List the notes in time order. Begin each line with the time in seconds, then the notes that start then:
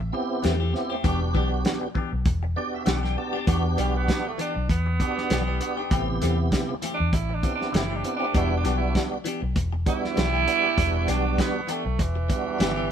Already playing: A1 E5
0.00 muted clean electric guitar stroke
0.12 B3 C4 E4 G4, muted clean electric guitar stroke
0.43 E2 E3 A3 C4 G4, snare, closed hi-hat
0.60 E3 A3 C4 G4
0.73 B3 C4 E4 G4, muted clean electric guitar stroke, snare
0.90 A3 C4 G4
1.04 E1 E3 B3 D4 F#4 G4, kick, closed hi-hat
1.21 muted clean electric guitar stroke
1.34 B1 E3 B3 D4 G4, kick
1.51 muted clean electric guitar stroke
1.65 snare, closed hi-hat
1.81 muted clean electric guitar stroke
1.95 E3 B3 D4 G4, kick
2.13 B1, muted clean electric guitar stroke
2.25 E1, muted clean electric guitar stroke, kick, closed hi-hat
2.43 muted clean electric guitar stroke
2.56 B3 D4 F#4 G4 D5, muted clean electric guitar stroke
2.74 E5
2.86 B1 E3 B3 D4 G4 F#5, snare, closed hi-hat
3.03 E3 B3 D4 G4 G5, snare
3.17 B3 D4 F#4 G4 A5, muted clean electric guitar stroke
3.33 B3 D4 G4
3.47 E2 E3 B3 D4 F#4 G4, kick, closed hi-hat
3.64 muted clean electric guitar stroke
3.77 B1 E3 G3 B3 D4 G4, closed hi-hat
3.94 B3, muted clean electric guitar stroke
4.08 kick, snare, closed hi-hat
4.25 A3, muted clean electric guitar stroke
4.38 E3 B3 D4 G4, closed hi-hat
4.56 B1
4.69 E2 B3, muted clean electric guitar stroke, kick, closed hi-hat
4.86 muted clean electric guitar stroke
5.00 B3 D4 F#4 G4, muted clean electric guitar stroke, kick, closed hi-hat
5.18 snare
5.30 B1 E3 B3 D4 G4, snare, closed hi-hat
5.47 E3 B3 D4 G4
5.60 B3 D4 F#4 G4, muted clean electric guitar stroke, closed hi-hat
5.77 B3 D4 G4
5.90 A1 C3 E3 A3 B3 C4 E4 G4, kick, closed hi-hat
6.09 muted clean electric guitar stroke
6.22 E2 E3 A3 C4 G4, snare, closed hi-hat
6.38 muted clean electric guitar stroke
6.52 kick, snare, closed hi-hat
6.69 muted clean electric guitar stroke
6.82 E3 A3 C4 G4, closed hi-hat
6.94 D4
6.99 E2, muted clean electric guitar stroke
7.13 A1 E4, muted clean electric guitar stroke, kick, closed hi-hat
7.29 muted clean electric guitar stroke
7.34 D4
7.43 B3 C4 E4 G4, muted clean electric guitar stroke, kick, closed hi-hat
7.55 D4
7.62 snare
7.73 F#1 E3 A3 C4 E4 G4, snare, closed hi-hat
7.90 E3 A3 C4 G4
7.96 D4
8.04 B3 C4 E4 G4, muted clean electric guitar stroke, closed hi-hat
8.16 D4 G4
8.22 A3 C4
8.34 E1 E3 G3 B3 D4 E4 F#4 G4, kick, closed hi-hat
8.51 muted clean electric guitar stroke
8.57 D4
8.64 B1 E3 B3 D4 G4, snare, closed hi-hat
8.78 E4, muted clean electric guitar stroke
8.95 kick, snare, closed hi-hat
9.12 muted clean electric guitar stroke
9.24 E3 B3 D4 G4, closed hi-hat
9.42 B1, muted clean electric guitar stroke
9.56 E1, muted clean electric guitar stroke, kick, closed hi-hat
9.73 muted clean electric guitar stroke
9.86 G3 B3 D4 E4 F#4, muted clean electric guitar stroke, kick, closed hi-hat
10.05 snare
10.16 B1 E3 B3 D4 G4, snare, closed hi-hat
10.33 E3 B3 D4 G4
10.47 G3 B3 D4 F#4, muted clean electric guitar stroke, closed hi-hat
10.63 B3 D4 G4
10.77 E1 G3 B3 D4 F#4, kick, closed hi-hat
10.95 muted clean electric guitar stroke
11.07 B1 E3 B3 D4 G4, snare, closed hi-hat
11.24 muted clean electric guitar stroke
11.38 B3, kick, snare, closed hi-hat
11.55 muted clean electric guitar stroke
11.67 E3 B3 D4 G4, closed hi-hat
11.71 A3
11.85 B1, muted clean electric guitar stroke
11.98 E1, muted clean electric guitar stroke, kick, closed hi-hat
12.02 E3
12.16 muted clean electric guitar stroke
12.29 G3 B3 D4 F#4, muted clean electric guitar stroke, kick, closed hi-hat
12.59 G1 E3 B3 D4 G4, snare, closed hi-hat
12.76 E3 B3 D4 G4